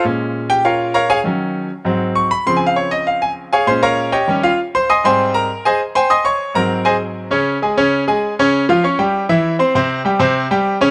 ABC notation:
X:1
M:4/4
L:1/8
Q:1/4=198
K:Dblyd
V:1 name="Grand piano"
z3 [Gg] [FBdf]2 [Bdfb] [Adfa] | z6 d' =b | (3c' a f d e f a z [Adfa] | [cc'] [Bdfb]2 [Gdeg]2 [Ff] z [cc'] |
[eac'e'] [cgac']2 [Bb]2 [Acea] z [cgac'] | [eac'e'] [dd']2 [Bb]2 [Acea] z2 | [D,Dd]2 [A,Aa] [D,Dd]2 [A,Aa]2 [D,Dd]- | [D,Dd] [F,Ff] [Ddd'] [G,Gg]2 [=E,=E=e]2 [Ccc'] |
[C,Cc]2 [G,Gg] [C,Cc]2 [G,Gg]2 [D,Dd] |]
V:2 name="Grand piano" clef=bass
[B,,A,D]8 | [E,_G,D]3 z [A,,G,C]3 z | [D,F,C]8 | [B,,A,D]3 z [E,G,D] z3 |
z [A,,G,C]3 z4 | z3 [A,,_G,C]4- [A,,G,C] | z8 | z8 |
z8 |]